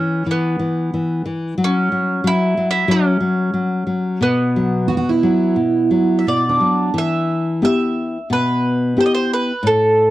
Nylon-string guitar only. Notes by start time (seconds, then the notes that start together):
Already playing: E3
0.26 E3
0.59 E3
0.94 E3
1.26 E3
1.58 F#3
1.92 F#3
2.24 F#3
2.57 F#3
2.88 F#3
3.20 F#3
3.54 F#3
3.87 F#3
4.21 B2
4.56 F#3
4.90 B2
5.23 F#3
5.56 B2
5.91 F#3
6.27 B2
6.60 F#3
6.94 E3
7.62 B3 E4 G4
8.30 B2
8.97 B3 E4 G4
9.63 A2